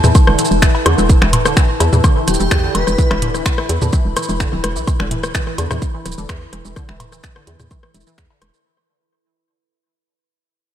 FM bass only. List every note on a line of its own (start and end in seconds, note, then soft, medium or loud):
0.04 0.12 E2 medium
0.27 0.36 E1 medium
0.51 0.69 E1 medium
0.86 0.95 E2 loud
0.98 1.16 E1 loud
1.22 1.47 E1 loud
1.45 1.54 D1 medium
1.80 1.90 E2 medium
1.93 2.01 E2 medium
2.28 2.37 D1 medium
2.40 2.49 E1 medium
2.51 2.70 E2 loud
2.75 2.84 E1 medium
2.88 2.96 E1 medium
3.11 3.36 E1 loud
3.35 3.43 D1 medium
3.69 3.79 E2 medium
3.82 3.90 E2 medium
4.05 4.14 E1 medium
4.29 4.47 E1 loud
4.53 4.61 D1 loud
4.64 4.78 E1 medium
4.76 4.85 B1 loud
5.00 5.25 E1 loud
5.23 5.32 D1 medium
5.58 5.68 E2 medium
5.71 5.79 E2 medium
6.06 6.15 D1 medium
6.18 6.27 E1 medium
6.29 6.48 E2 loud
6.53 6.62 E1 medium
6.65 6.74 E1 medium
6.89 7.14 E1 loud
7.13 7.21 D1 medium
7.47 7.57 E2 loud
7.60 7.68 E2 medium
7.94 8.04 E1 loud
8.18 8.28 E2 loud
8.42 8.51 E1 medium